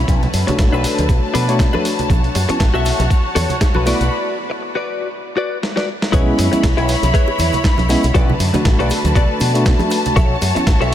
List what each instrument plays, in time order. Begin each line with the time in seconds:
0.08 fingered electric bass B1, string section D3 B4 A5, kick, closed hi-hat, high conga, cabasa
0.23 closed hi-hat, high bongo, low conga
0.33 fingered electric bass F#2, open hi-hat, cabasa
0.47 tine electric piano A3 D4 F#4 C#5, muted clean electric guitar stroke, muted fingered electric bass stroke, closed hi-hat, high bongo, high conga, low conga, cabasa
0.59 fingered electric bass A1, muted clean electric guitar stroke, kick, snare, closed hi-hat, cabasa
0.72 fingered electric bass B1, clean electric guitar D4 A4 B4, cabasa
0.84 muted fingered electric bass stroke, open hi-hat, high bongo, cabasa
0.98 fingered electric bass D2, closed hi-hat, high conga, cabasa
1.09 fingered electric bass B1, kick, closed hi-hat, high bongo, cabasa
1.34 fingered electric bass B2, clean electric guitar D4 A4 B4, open hi-hat, high conga, cabasa
1.48 tine electric piano A3 D4 F#4 C#5, closed hi-hat, high bongo, cabasa
1.59 kick, snare, closed hi-hat, cabasa
1.73 clean electric guitar D4 A4 B4, high bongo, high conga
1.85 open hi-hat, cabasa
1.99 muted clean electric guitar stroke, closed hi-hat, low conga, cabasa
2.09 fingered electric bass B1, string section F#4 C#5, kick, closed hi-hat, high bongo, high conga, cabasa
2.24 closed hi-hat
2.35 fingered electric bass F#2, open hi-hat, high bongo, cabasa
2.49 tine electric piano B3 C#4 E4 F#4, muted clean electric guitar stroke, muted fingered electric bass stroke, closed hi-hat, high conga, cabasa
2.60 fingered electric bass A1, muted clean electric guitar stroke, kick, snare, closed hi-hat, cabasa
2.74 fingered electric bass B1, clean electric guitar F#4 A4 E5, high bongo, cabasa
2.85 open hi-hat, cabasa
2.99 fingered electric bass B1, closed hi-hat, high bongo, high conga, cabasa
3.10 kick, closed hi-hat, cabasa
3.35 fingered electric bass E2, clean electric guitar F#4 A4 C#5, open hi-hat, high bongo, high conga, cabasa
3.49 closed hi-hat, low conga, cabasa
3.61 kick, snare, closed hi-hat, high bongo, cabasa
3.74 fingered electric bass B1, clean electric guitar F#4 A4 B4, high conga
3.86 tine electric piano A3 B3 E4 F#4, clean electric guitar F#4 B4 D5, string section F#4 D5 B5, open hi-hat, cabasa
4.00 fingered electric bass B1, closed hi-hat, high bongo, cabasa
4.50 muted clean electric guitar stroke
4.61 muted clean electric guitar stroke
4.75 clean electric guitar F#4 B4 D5
5.37 clean electric guitar F#4 B4 D5
5.63 snare
5.76 clean electric guitar F#4 B4 D5, snare
6.02 muted clean electric guitar stroke, snare
6.12 fingered electric bass B1, tine electric piano G#3 B3 C#4 E4, clean electric guitar E4 G#4 B4 C#5, string section E4 C#5 B5, kick, closed hi-hat, high conga, cabasa
6.38 fingered electric bass F#2, open hi-hat, high bongo, cabasa
6.52 tine electric piano G#3 B3 C#4 E4, muted clean electric guitar stroke, muted fingered electric bass stroke, closed hi-hat, high conga, cabasa
6.63 fingered electric bass B1, muted clean electric guitar stroke, kick, snare, closed hi-hat, high bongo, cabasa
6.77 fingered electric bass B1, clean electric guitar E4 G#4 B4 C#5, closed hi-hat
6.89 open hi-hat, cabasa
7.02 fingered electric bass B1, closed hi-hat, high bongo, high conga, cabasa
7.14 clean electric guitar E4 G#4 B4 C#5, kick, closed hi-hat, cabasa
7.28 high bongo
7.39 fingered electric bass E2, open hi-hat, high conga, cabasa
7.52 closed hi-hat, low conga, cabasa
7.63 kick, snare, closed hi-hat, high bongo, cabasa
7.78 fingered electric bass B1, closed hi-hat, high conga
7.89 tine electric piano G#3 B3 C#4 E4, muted clean electric guitar stroke, open hi-hat, high bongo, cabasa
8.03 fingered electric bass B1, closed hi-hat, cabasa
8.14 fingered electric bass B1, string section D3 B4 A5, clean electric guitar F#4 A4 B4 D5, kick, closed hi-hat, high conga, cabasa
8.29 high bongo, low conga
8.40 fingered electric bass F#2, open hi-hat, cabasa
8.53 tine electric piano A3 D4 F#4, muted clean electric guitar stroke, muted fingered electric bass stroke, closed hi-hat, high bongo, high conga, low conga, cabasa
8.65 fingered electric bass A1, muted clean electric guitar stroke, kick, snare, closed hi-hat, cabasa
8.79 fingered electric bass B1, clean electric guitar F#4 A4 B4 D5, closed hi-hat
8.90 muted fingered electric bass stroke, open hi-hat, high bongo, cabasa
9.04 fingered electric bass D2, closed hi-hat, high conga, cabasa
9.15 fingered electric bass B1, clean electric guitar F#4 A4 B4 D5, kick, closed hi-hat, high bongo, cabasa
9.40 fingered electric bass B2, open hi-hat, high conga, cabasa
9.54 tine electric piano A3 D4 F#4, closed hi-hat, high bongo, cabasa
9.65 kick, snare, closed hi-hat, cabasa
9.79 closed hi-hat, high bongo, high conga
9.90 muted clean electric guitar stroke, open hi-hat, cabasa
10.05 closed hi-hat, low conga, cabasa
10.16 fingered electric bass B1, clean electric guitar F#4 A4 C#5 E5, string section F#4 C#5, kick, closed hi-hat, high bongo, high conga, cabasa
10.42 fingered electric bass F#2, open hi-hat, high bongo, cabasa
10.55 tine electric piano B3 C#4 E4 F#4, muted clean electric guitar stroke, muted fingered electric bass stroke, closed hi-hat, high conga, cabasa
10.67 fingered electric bass A1, muted clean electric guitar stroke, kick, snare, closed hi-hat, cabasa
10.80 fingered electric bass B1, clean electric guitar F#4 A4 C#5 E5, closed hi-hat, high bongo